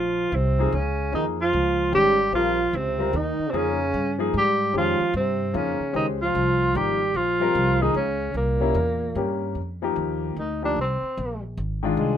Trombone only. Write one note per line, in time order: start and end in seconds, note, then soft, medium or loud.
0.00 0.34 F3 medium
0.33 0.75 C3 medium
0.73 1.13 C#3 medium
1.14 1.25 D#3 medium
1.40 1.89 F3 medium
1.94 2.31 G3 medium
2.36 2.77 F3 medium
2.76 3.17 C3 medium
3.16 3.51 D#3 medium
3.49 3.58 C3 medium
3.57 4.21 C#3 medium
4.36 4.72 G3 medium
4.76 5.12 F3 medium
5.16 5.57 C3 medium
5.56 5.95 C#3 medium
5.96 6.07 D#3 medium
6.22 6.77 F3 medium
6.76 7.17 G3 medium
7.16 7.82 F3 medium
7.81 7.94 D#3 medium
7.94 8.32 C#3 medium
8.35 9.37 A#2 medium